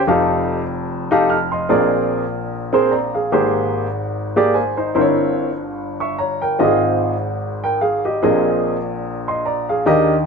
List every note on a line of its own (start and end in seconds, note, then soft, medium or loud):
0.07 1.66 F1 medium
0.07 1.66 F2 medium
0.07 0.60 D#4 medium
0.07 0.61 G4 medium
0.07 0.61 A4 medium
0.07 0.61 F5 medium
1.11 1.35 D#4 medium
1.11 1.36 G4 medium
1.11 1.36 A4 medium
1.11 1.30 F5 medium
1.30 1.52 A5 soft
1.30 1.51 F6 medium
1.52 1.91 D#5 medium
1.52 1.91 C6 medium
1.69 3.29 A#1 medium
1.69 3.29 A#2 medium
1.69 2.23 C4 medium
1.69 2.23 G#4 medium
1.69 2.23 A#4 medium
1.69 2.23 D5 medium
2.73 2.98 C4 medium
2.73 2.92 G#4 medium
2.73 2.92 A#4 medium
2.73 2.92 C5 medium
2.91 3.14 D5 soft
2.91 3.13 A#5 medium
3.14 3.31 G#4 soft
3.14 3.53 F5 medium
3.32 4.92 G#1 medium
3.32 4.92 G#2 medium
3.32 3.86 A#3 medium
3.32 3.86 G4 medium
3.32 3.86 G#4 medium
3.32 3.86 C5 medium
4.36 4.61 A#3 medium
4.36 4.55 G4 medium
4.36 4.55 G#4 medium
4.36 4.55 D5 medium
4.54 4.76 C5 soft
4.54 4.76 G#5 medium
4.77 5.16 D#4 medium
4.77 4.94 C5 medium
4.95 6.55 G1 medium
4.95 6.55 G2 medium
4.95 5.49 C4 medium
4.95 5.49 E4 medium
4.95 5.49 A#4 medium
4.95 5.01 C5 medium
5.01 5.52 C#5 medium
6.00 6.18 E5 soft
6.00 6.17 C#6 medium
6.18 6.40 C#5 medium
6.18 6.40 A#5 medium
6.42 6.80 A#4 medium
6.42 6.80 G5 medium
6.59 8.19 G#1 medium
6.59 8.19 G#2 medium
6.59 7.12 C4 medium
6.59 7.13 F4 medium
6.59 6.65 G4 medium
6.59 7.13 D#5 medium
6.64 7.15 G#4 medium
7.64 7.81 A#4 medium
7.64 7.81 G5 medium
7.81 8.03 G#4 medium
7.81 8.03 F5 medium
8.05 8.44 G4 soft
8.05 8.22 D#5 medium
8.23 9.82 A#1 medium
8.23 9.82 A#2 medium
8.23 8.76 C4 medium
8.23 8.76 G#4 medium
8.23 8.76 A#4 medium
8.23 8.76 D#5 medium
9.28 9.45 D#5 medium
9.28 9.45 C6 medium
9.46 9.67 D5 medium
9.46 9.67 A#5 medium
9.69 10.08 G#4 soft
9.69 10.08 F5 medium
9.86 10.26 D#2 medium
9.86 10.26 D#3 medium
9.86 10.14 D4 medium
9.86 10.14 G4 medium
9.86 10.14 A#4 medium
9.86 10.14 D#5 medium